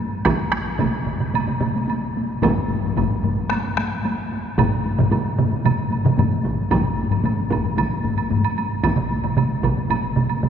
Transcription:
0.12 taiko high soft
0.25 taiko rim medium
0.25 taiko medium
0.25 taiko high medium
0.25 high woodblock medium
0.39 taiko high soft
0.52 taiko rim medium
0.52 taiko high soft
0.67 taiko high soft
0.79 taiko medium
0.79 taiko mid loud
0.79 taiko high medium
0.79 high woodblock soft
0.94 taiko high soft
1.07 taiko mid medium
1.07 taiko high soft
1.20 taiko mid medium
1.20 taiko high soft
1.34 taiko mid medium
1.34 taiko high medium
1.34 high woodblock medium
1.48 taiko mid medium
1.48 taiko high soft
1.61 taiko mid loud
1.61 taiko high medium
1.61 high woodblock soft
1.75 taiko high medium
1.88 taiko high medium
1.88 high woodblock soft
2.02 taiko high soft
2.16 taiko high medium
2.30 taiko high soft
2.42 taiko loud
2.42 taiko low-mid loud
2.42 taiko high medium
2.42 high woodblock soft
2.70 taiko low-mid medium
2.70 taiko high medium
2.83 taiko low-mid medium
2.83 taiko high soft
2.97 taiko medium
2.97 taiko low-mid loud
2.97 taiko high medium
2.97 high woodblock soft
3.11 taiko high soft
3.24 taiko low-mid medium
3.24 taiko high medium
3.38 taiko high soft
3.50 taiko rim medium
3.50 taiko high medium
3.50 high woodblock soft
3.65 taiko high soft
3.77 taiko rim medium
3.77 taiko high medium
3.77 high woodblock soft
4.05 taiko high medium
4.05 high woodblock soft
4.20 taiko high soft
4.32 taiko high soft
4.45 taiko high soft
4.58 taiko medium
4.58 taiko low-mid loud
4.58 taiko mid medium
4.58 taiko high medium
4.58 high woodblock medium
4.86 taiko high medium
4.99 taiko low-mid medium
4.99 taiko mid loud
4.99 taiko high soft
5.11 taiko medium
5.11 taiko high medium
5.11 high woodblock soft
5.25 taiko high soft
5.39 taiko low-mid medium
5.39 taiko mid loud
5.39 taiko high medium
5.52 taiko high soft
5.65 taiko low-mid medium
5.65 taiko mid loud
5.65 taiko high medium
5.65 high woodblock medium
5.78 taiko high soft
5.92 taiko high medium
5.92 high woodblock soft
6.05 taiko low-mid medium
6.05 taiko mid loud
6.18 taiko low-mid medium
6.18 taiko mid medium
6.18 taiko high medium
6.18 high woodblock soft
6.31 taiko high soft
6.44 taiko medium
6.44 taiko high medium
6.57 taiko high soft
6.71 taiko medium
6.71 taiko high medium
6.71 high woodblock medium
6.83 taiko low-mid medium
6.83 taiko high soft
6.97 taiko high soft
7.11 taiko low-mid medium
7.11 taiko high soft
7.11 high woodblock soft
7.24 taiko low-mid medium
7.24 taiko high medium
7.24 high woodblock soft
7.37 taiko high soft
7.50 taiko medium
7.50 taiko low-mid medium
7.50 taiko high soft
7.50 high woodblock soft
7.63 taiko low-mid medium
7.63 taiko high soft
7.77 taiko medium
7.77 taiko high medium
7.77 high woodblock medium
7.90 taiko high soft
8.03 taiko low-mid medium
8.03 taiko high soft
8.16 taiko high soft
8.16 high woodblock soft
8.31 taiko low-mid medium
8.31 taiko high medium
8.45 taiko high soft
8.45 high woodblock soft
8.58 taiko high medium
8.58 high woodblock soft
8.72 taiko high soft
8.84 taiko medium
8.84 taiko high medium
8.84 high woodblock medium
8.97 taiko mid medium
8.97 taiko high soft
9.12 taiko high medium
9.24 taiko mid medium
9.24 taiko high soft
9.24 high woodblock soft
9.37 taiko mid medium
9.37 taiko high medium
9.37 high woodblock soft
9.51 taiko high soft
9.63 taiko medium
9.63 taiko mid medium
9.63 taiko high soft
9.63 high woodblock soft
9.77 taiko mid medium
9.77 taiko high soft
9.90 taiko medium
9.90 taiko high medium
9.90 high woodblock medium
10.04 taiko high soft
10.16 taiko mid medium
10.16 taiko high soft
10.30 taiko high soft
10.30 high woodblock soft
10.43 taiko mid medium
10.43 taiko high medium

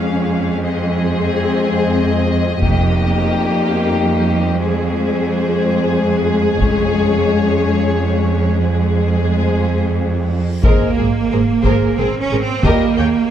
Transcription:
0.00 2.58 F2 soft
0.00 0.61 G#3 soft
0.00 0.60 C#4 soft
0.00 0.60 G#4 soft
0.00 0.60 F5 soft
0.63 2.44 G#3 medium
0.63 2.44 C4 medium
0.63 2.58 C4 soft
0.63 2.58 G#4 medium
0.63 4.57 D#5 soft
2.61 3.24 F1 soft
2.61 6.56 F2 medium
2.61 4.56 G3 medium
2.61 4.57 A#3 medium
2.61 4.56 D#4 medium
2.61 4.56 G4 medium
2.61 taiko medium
4.60 8.57 G#3 soft
4.60 8.57 G#3 medium
4.60 6.56 C4 medium
4.60 8.58 G#4 medium
4.60 6.56 C5 soft
6.59 7.22 F1 soft
6.59 10.40 F2 soft
6.59 8.57 C#4 medium
6.59 8.57 C#5 soft
6.59 taiko medium
8.60 10.28 G#3 soft
8.60 10.40 G#3 soft
8.60 10.28 C4 soft
8.60 10.40 G#4 soft
8.60 10.40 C5 soft
8.60 reverse cymbal soft
10.63 10.72 G#1 soft
10.63 10.87 G#2 soft
10.63 10.87 G#3 soft
10.63 11.93 A#3 medium
10.63 10.96 G#4 soft
10.63 10.95 A#4 medium
10.63 10.88 C5 soft
10.63 10.96 C5 soft
10.63 10.88 D#5 soft
10.63 taiko medium
10.63 sub drop medium
10.97 11.06 G#1 soft
10.97 11.05 G#4 soft
10.97 11.06 G#4 soft
10.97 11.06 A#4 soft
11.31 11.40 G#1 soft
11.31 11.39 G#4 soft
11.31 11.40 A#4 soft
11.31 11.40 C5 soft
11.63 11.73 G#1 medium
11.63 11.96 G#4 soft
11.63 11.96 A#4 soft
11.63 11.96 C5 soft
11.63 taiko medium
11.97 12.07 G#1 soft
11.97 12.19 C4 medium
11.97 12.07 G#4 soft
11.97 12.06 A#4 soft
12.21 12.42 C#4 medium
12.31 12.39 G#1 soft
12.31 12.40 G#4 soft
12.31 12.41 A#4 soft
12.31 12.40 C5 soft
12.43 12.64 C4 medium
12.64 12.72 D#2 medium
12.64 12.88 A#2 soft
12.64 12.88 G3 soft
12.64 13.30 A#3 medium
12.64 12.96 G4 soft
12.64 12.88 A#4 soft
12.64 12.96 A#4 medium
12.64 12.96 D#5 medium
12.64 12.88 D#5 soft
12.64 taiko medium
12.97 13.05 D#2 soft
12.97 13.07 G#4 soft
12.97 13.07 C#5 soft
12.97 13.05 G5 soft

